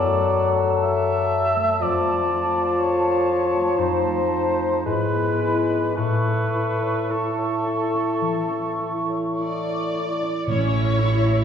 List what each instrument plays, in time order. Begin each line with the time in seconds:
Already playing: harp F#2, bassoon F#3, clarinet A4, cor anglais D5, flute section A5
0.07 harp A3
0.32 harp A4
0.57 harp D5
0.83 harp A4, cor anglais E5
1.06 harp D5
1.31 harp A4
1.56 harp A3
1.80 harp F2, bassoon F3, clarinet F4, cor anglais D5
2.05 harp A3
2.30 harp F4
2.55 harp D5
2.80 harp A4, cor anglais C#5
3.06 harp D5
3.30 harp F4
3.53 harp A3
3.79 harp F2, clarinet D#4, cor anglais C5
4.06 harp A3
4.31 harp D#4
4.57 harp D#5
4.85 harp G#2, bassoon G#3, clarinet E4, cor anglais B4, flute section B5
5.12 harp B3
5.40 harp E4
5.69 harp D5
5.95 harp A2, bassoon A3, clarinet A4, cor anglais B4, flute section C#6
6.27 harp C#4
6.55 harp E4
6.82 harp C#5
7.10 harp E4, cor anglais A4
7.38 harp C#5
7.66 harp E4
7.94 harp C#4
8.21 harp E3
8.50 harp C#4
8.79 harp E4
9.09 harp C#5
9.38 harp E4, violin section D5
9.66 harp C#5
9.94 harp E4
10.22 harp C#4
10.47 double bass section A1, timpani A2, harp A2, cello section A2, viola section C#4 E4, violin section C#5
10.74 harp C#4
10.99 viola section E4, harp E4
11.26 harp C#5